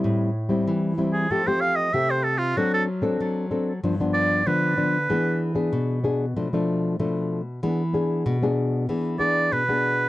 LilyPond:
<<
  \new Staff \with { instrumentName = "Oboe" } { \time 4/4 \key a \minor \tempo 4 = 95 r4. r16 gis'16 a'16 c''16 f''16 dis''16 e''16 c''16 a'16 f'16 | fis'16 a'16 r2 d''8 b'4~ | b'8 r2. r8 | r2 r8 d''8 b'4 | }
  \new Staff \with { instrumentName = "Nylon-string guitar" } { \time 4/4 \key a \minor << { <g c' e'>8 r16 <g c' e'>8. <g c' e'>8 <a c' g'>16 <a c' g'>8. <a c' g'>8. r16 | <c' d' a'>8 r16 <c' d' a'>8. <c' d' a'>16 r16 <f b d'>16 <f b d'>8. <f b d'>8 <f b d'>16 r16 | <b d' gis'>8. <b d' gis'>8. <b d' gis'>16 r16 <f a d'>16 <f a d'>8. <f a d'>8. r16 | <b d' gis'>16 r16 <b d' gis'>8. <b d' gis'>8. <b d' gis'>8 <b d' gis'>8. <b d' gis'>8. | } \\ { a,4 e4 f4 c4 | fis4 fis4 g,4 d4 | e4 b,4 b,4 b,4 | e4 b,4 e4 b,4 | } >> }
>>